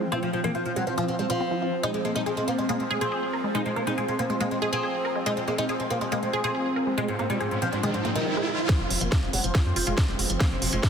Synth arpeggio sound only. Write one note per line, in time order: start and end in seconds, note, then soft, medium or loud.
0.01 0.08 F3 medium
0.12 0.22 F3 loud
0.33 0.44 F#3 medium
0.44 0.54 F3 medium
0.55 0.65 F4 medium
0.76 0.83 G#3 medium
0.87 0.94 F3 medium
0.98 1.08 F3 loud
1.19 1.26 G#3 medium
1.30 1.34 F4 medium
1.40 1.45 C4 medium
1.51 1.61 F3 medium
1.62 1.69 F3 medium
1.83 1.94 G#3 loud
2.05 2.15 A#3 medium
2.15 2.26 G#3 medium
2.26 2.36 G#4 medium
2.48 2.55 C4 medium
2.58 2.65 G#3 medium
2.69 2.79 G#3 loud
2.90 3.00 G#4 loud
3.01 3.11 G#4 loud
3.12 3.19 G#4 medium
3.33 3.40 A#4 medium
3.44 3.51 G#3 medium
3.55 3.65 G#3 loud
3.76 3.86 A#3 medium
3.87 3.97 G#3 medium
3.98 4.08 G#4 medium
4.19 4.26 C4 medium
4.30 4.37 G#3 medium
4.40 4.51 G#3 loud
4.62 4.71 G#4 loud
4.73 4.82 G#4 loud
4.83 4.90 G#4 medium
5.05 5.12 A#4 medium
5.16 5.23 G#3 medium
5.26 5.36 G#3 loud
5.48 5.58 A#3 medium
5.58 5.69 G#3 medium
5.69 5.79 G#4 medium
5.91 5.98 C4 medium
6.01 6.08 G#3 medium
6.12 6.22 G#3 loud
6.33 6.43 G#4 loud
6.44 6.54 G#4 loud
6.55 6.62 G#4 medium
6.76 6.83 A#4 medium
6.87 6.94 G#3 medium
6.98 7.08 G#3 loud
7.19 7.29 A#3 medium
7.30 7.40 G#3 medium
7.40 7.51 G#4 medium
7.62 7.69 C4 medium
7.73 7.80 G#3 medium
7.83 7.94 G#3 loud
8.05 8.15 A#3 medium
8.16 8.23 G#3 medium
8.26 8.33 G#3 medium
8.37 8.47 G#3 loud
8.48 8.58 G#4 medium
8.69 8.79 F3 loud
8.90 9.01 F#3 medium
9.01 9.11 F3 medium
9.12 9.22 F4 medium
9.33 9.40 G#3 medium
9.44 9.51 F3 medium
9.55 9.65 F3 loud
9.76 9.86 F4 loud
9.87 9.96 F4 loud
9.98 10.05 F4 medium
10.19 10.26 F#4 medium
10.30 10.37 F3 medium
10.40 10.51 F3 loud
10.62 10.72 F#3 medium
10.73 10.83 F3 medium
10.83 10.89 F4 medium